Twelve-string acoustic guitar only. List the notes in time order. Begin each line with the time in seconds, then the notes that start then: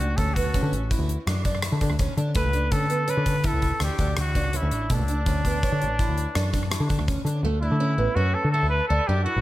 0.01 D4
0.19 C#4
0.36 B3
0.55 C#4
0.91 E4
1.28 D4
1.45 D4
1.63 E4
1.82 D4
2.00 C#4
2.18 D4
2.36 A3
2.54 D4
2.73 C#4
2.90 B3
3.08 C#4
3.44 E4
3.82 D4
4.00 D4
4.17 E4
4.36 D4
4.54 C#4
4.72 D4
4.90 A3
5.10 D4
5.28 C#4
5.46 B3
5.63 C#5
6.00 E4
6.35 D4
6.53 D4
6.71 E4
6.89 D4
7.08 C#4
7.27 D4
7.45 A3
7.62 D4
7.80 C#4
7.98 B3
8.16 C#4
8.54 E4
8.90 D4
9.09 D4
9.26 E4